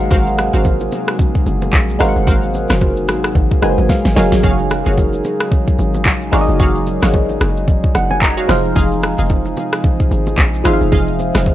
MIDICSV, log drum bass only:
0, 0, Header, 1, 2, 480
1, 0, Start_track
1, 0, Tempo, 540541
1, 99, Time_signature, 4, 2, 24, 8
1, 10252, End_track
2, 0, Start_track
2, 0, Title_t, "Log drum bass"
2, 0, Program_c, 0, 39
2, 99, Note_on_c, 0, 32, 113
2, 446, Note_off_c, 0, 32, 0
2, 477, Note_on_c, 0, 32, 99
2, 790, Note_off_c, 0, 32, 0
2, 1298, Note_on_c, 0, 30, 95
2, 1518, Note_off_c, 0, 30, 0
2, 1536, Note_on_c, 0, 34, 91
2, 1757, Note_off_c, 0, 34, 0
2, 1778, Note_on_c, 0, 32, 101
2, 1906, Note_off_c, 0, 32, 0
2, 1917, Note_on_c, 0, 30, 94
2, 2010, Note_off_c, 0, 30, 0
2, 2018, Note_on_c, 0, 32, 111
2, 2365, Note_off_c, 0, 32, 0
2, 2397, Note_on_c, 0, 30, 91
2, 2738, Note_on_c, 0, 32, 101
2, 2752, Note_off_c, 0, 30, 0
2, 2958, Note_off_c, 0, 32, 0
2, 2977, Note_on_c, 0, 32, 95
2, 3105, Note_off_c, 0, 32, 0
2, 3218, Note_on_c, 0, 30, 89
2, 3346, Note_off_c, 0, 30, 0
2, 3358, Note_on_c, 0, 32, 87
2, 3450, Note_off_c, 0, 32, 0
2, 3598, Note_on_c, 0, 32, 94
2, 3690, Note_off_c, 0, 32, 0
2, 3699, Note_on_c, 0, 30, 106
2, 3826, Note_off_c, 0, 30, 0
2, 3838, Note_on_c, 0, 32, 92
2, 3930, Note_off_c, 0, 32, 0
2, 3938, Note_on_c, 0, 30, 113
2, 4286, Note_off_c, 0, 30, 0
2, 4318, Note_on_c, 0, 30, 99
2, 4630, Note_off_c, 0, 30, 0
2, 5139, Note_on_c, 0, 32, 89
2, 5377, Note_on_c, 0, 34, 100
2, 5390, Note_off_c, 0, 32, 0
2, 5597, Note_off_c, 0, 34, 0
2, 5619, Note_on_c, 0, 32, 103
2, 5746, Note_off_c, 0, 32, 0
2, 5758, Note_on_c, 0, 30, 95
2, 5850, Note_off_c, 0, 30, 0
2, 5859, Note_on_c, 0, 30, 110
2, 6206, Note_off_c, 0, 30, 0
2, 6238, Note_on_c, 0, 32, 83
2, 6550, Note_off_c, 0, 32, 0
2, 6578, Note_on_c, 0, 30, 103
2, 6926, Note_off_c, 0, 30, 0
2, 7058, Note_on_c, 0, 30, 94
2, 7503, Note_off_c, 0, 30, 0
2, 7538, Note_on_c, 0, 29, 101
2, 7758, Note_off_c, 0, 29, 0
2, 7778, Note_on_c, 0, 29, 114
2, 8126, Note_off_c, 0, 29, 0
2, 8158, Note_on_c, 0, 29, 97
2, 8470, Note_off_c, 0, 29, 0
2, 8978, Note_on_c, 0, 32, 89
2, 9198, Note_off_c, 0, 32, 0
2, 9216, Note_on_c, 0, 34, 102
2, 9437, Note_off_c, 0, 34, 0
2, 9458, Note_on_c, 0, 32, 94
2, 9586, Note_off_c, 0, 32, 0
2, 9598, Note_on_c, 0, 29, 90
2, 9690, Note_off_c, 0, 29, 0
2, 9698, Note_on_c, 0, 29, 105
2, 10046, Note_off_c, 0, 29, 0
2, 10079, Note_on_c, 0, 29, 92
2, 10252, Note_off_c, 0, 29, 0
2, 10252, End_track
0, 0, End_of_file